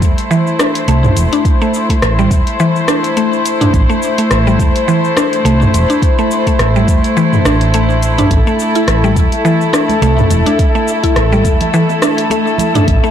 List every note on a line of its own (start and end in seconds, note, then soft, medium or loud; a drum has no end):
0.00 0.12 E1 medium
0.00 13.11 A3 medium
0.00 13.11 E4 medium
0.00 8.29 C5 medium
0.00 kick medium
0.00 closed hi-hat soft
0.00 cabasa medium
0.18 closed hi-hat soft
0.18 cabasa soft
0.31 0.58 E3 medium
0.31 cabasa soft
0.47 cabasa soft
0.59 0.75 D4 medium
0.59 cross-stick medium
0.59 closed hi-hat soft
0.59 cabasa medium
0.75 closed hi-hat soft
0.75 cabasa soft
0.88 1.07 C2 medium
0.88 1.03 A3 medium
0.88 closed hi-hat medium
0.88 cabasa soft
1.04 mid tom medium
1.04 cabasa soft
1.16 1.27 E1 loud
1.16 closed hi-hat medium
1.16 cabasa medium
1.33 1.44 D4 medium
1.33 closed hi-hat soft
1.33 cabasa soft
1.45 kick loud
1.45 closed hi-hat medium
1.45 cabasa soft
1.61 1.73 A3 medium
1.61 cabasa soft
1.74 cabasa medium
1.90 1.97 A3 medium
1.90 kick medium
1.90 closed hi-hat soft
1.90 cabasa soft
2.02 2.31 A1 medium
2.02 cross-stick medium
2.02 closed hi-hat medium
2.02 cabasa soft
2.19 2.30 G3 medium
2.19 cabasa soft
2.31 2.41 E1 medium
2.31 kick loud
2.31 closed hi-hat soft
2.31 cabasa medium
2.47 closed hi-hat soft
2.47 cabasa soft
2.60 2.87 E3 loud
2.60 cabasa soft
2.76 cabasa soft
2.88 3.03 D4 medium
2.88 cross-stick medium
2.88 closed hi-hat soft
2.88 cabasa medium
3.04 closed hi-hat soft
3.04 cabasa soft
3.17 3.32 A3 medium
3.17 closed hi-hat medium
3.17 cabasa soft
3.33 cabasa soft
3.46 closed hi-hat medium
3.46 cabasa medium
3.61 3.73 D4 medium
3.61 closed hi-hat soft
3.61 mid tom medium
3.61 cabasa soft
3.74 3.84 A1 loud
3.74 kick loud
3.74 closed hi-hat medium
3.74 cabasa soft
3.90 4.01 A3 medium
3.90 cabasa soft
4.02 cabasa medium
4.18 4.25 A3 medium
4.18 closed hi-hat soft
4.18 cabasa soft
4.31 4.60 A1 medium
4.31 cross-stick medium
4.31 closed hi-hat medium
4.31 cabasa soft
4.47 4.59 G3 medium
4.47 cabasa soft
4.59 4.70 E1 medium
4.59 kick loud
4.59 closed hi-hat soft
4.59 cabasa medium
4.76 closed hi-hat soft
4.76 cabasa soft
4.88 5.15 E3 medium
4.88 cabasa soft
5.04 cabasa soft
5.17 5.32 D4 medium
5.17 cross-stick medium
5.17 closed hi-hat soft
5.17 cabasa medium
5.33 closed hi-hat soft
5.33 cabasa soft
5.45 5.64 C2 medium
5.45 5.60 A3 medium
5.45 closed hi-hat medium
5.45 cabasa soft
5.62 mid tom medium
5.62 cabasa soft
5.74 5.84 E1 loud
5.74 closed hi-hat medium
5.74 cabasa medium
5.90 6.02 D4 medium
5.90 closed hi-hat soft
5.90 cabasa soft
6.02 kick loud
6.02 closed hi-hat medium
6.02 cabasa soft
6.19 6.30 A3 medium
6.19 cabasa soft
6.31 cabasa medium
6.47 6.54 A3 medium
6.47 kick medium
6.47 closed hi-hat soft
6.47 cabasa soft
6.59 6.88 A1 medium
6.59 cross-stick medium
6.59 closed hi-hat medium
6.59 cabasa soft
6.76 6.88 G3 medium
6.76 cabasa soft
6.88 6.98 E1 medium
6.88 kick medium
6.88 closed hi-hat soft
6.88 cabasa medium
7.04 closed hi-hat soft
7.04 cabasa soft
7.17 7.44 E3 medium
7.17 cabasa soft
7.33 mid tom medium
7.33 cabasa soft
7.45 8.23 A1 medium
7.45 7.60 D4 medium
7.45 cross-stick medium
7.45 closed hi-hat soft
7.45 cabasa medium
7.61 closed hi-hat soft
7.61 cabasa soft
7.74 7.89 A3 medium
7.74 closed hi-hat soft
7.74 cabasa soft
7.90 cabasa soft
8.03 closed hi-hat medium
8.03 cabasa medium
8.18 8.30 D4 medium
8.18 closed hi-hat soft
8.18 mid tom medium
8.18 cabasa soft
8.30 8.41 A1 medium
8.30 13.11 A4 medium
8.30 13.11 E5 medium
8.30 kick loud
8.30 closed hi-hat medium
8.30 cabasa soft
8.47 8.59 A3 medium
8.47 cabasa soft
8.59 cabasa medium
8.75 8.87 E4 medium
8.75 closed hi-hat soft
8.75 cabasa soft
8.88 9.17 A1 medium
8.88 cross-stick medium
8.88 closed hi-hat medium
8.88 cabasa soft
9.03 9.16 G3 medium
9.03 high bongo soft
9.03 high conga medium
9.03 cabasa soft
9.16 9.27 E1 medium
9.16 kick medium
9.16 closed hi-hat soft
9.16 cabasa medium
9.32 closed hi-hat soft
9.32 high bongo soft
9.32 cabasa soft
9.45 9.72 E3 loud
9.45 cabasa soft
9.61 cabasa soft
9.73 9.88 D4 medium
9.73 cross-stick medium
9.73 closed hi-hat soft
9.73 cabasa medium
9.89 closed hi-hat soft
9.89 high conga medium
9.89 cabasa soft
10.02 10.21 C2 medium
10.02 10.17 A3 medium
10.02 closed hi-hat medium
10.02 cabasa soft
10.18 mid tom medium
10.18 cabasa soft
10.30 10.41 E1 loud
10.30 closed hi-hat medium
10.30 high bongo medium
10.30 high conga medium
10.30 cabasa medium
10.46 10.58 D4 medium
10.46 closed hi-hat soft
10.46 high conga medium
10.46 cabasa soft
10.59 kick loud
10.59 closed hi-hat medium
10.59 cabasa soft
10.75 10.87 A3 medium
10.75 cabasa soft
10.88 cabasa medium
11.04 11.16 E4 medium
11.04 kick medium
11.04 closed hi-hat soft
11.04 cabasa soft
11.16 11.45 A1 medium
11.16 cross-stick medium
11.16 closed hi-hat soft
11.16 cabasa soft
11.32 11.44 G3 medium
11.32 high conga medium
11.32 cabasa soft
11.45 11.55 E1 medium
11.45 kick medium
11.45 closed hi-hat soft
11.45 cabasa medium
11.60 closed hi-hat soft
11.60 high bongo soft
11.60 low conga medium
11.60 cabasa soft
11.74 12.01 E3 loud
11.74 cabasa soft
11.89 high bongo medium
11.89 cabasa soft
12.02 12.17 D4 medium
12.02 cross-stick medium
12.02 closed hi-hat soft
12.02 high bongo soft
12.02 cabasa medium
12.18 closed hi-hat soft
12.18 cabasa soft
12.30 12.46 A3 medium
12.30 closed hi-hat medium
12.30 high bongo medium
12.30 high conga medium
12.30 cabasa soft
12.47 cabasa soft
12.58 closed hi-hat medium
12.58 high conga medium
12.58 low conga medium
12.58 cabasa medium
12.75 12.87 D4 medium
12.75 closed hi-hat soft
12.75 mid tom medium
12.75 cabasa soft
12.88 12.98 A1 loud
12.88 kick loud
12.88 closed hi-hat medium
12.88 cabasa soft
13.04 13.11 A3 medium
13.04 cabasa soft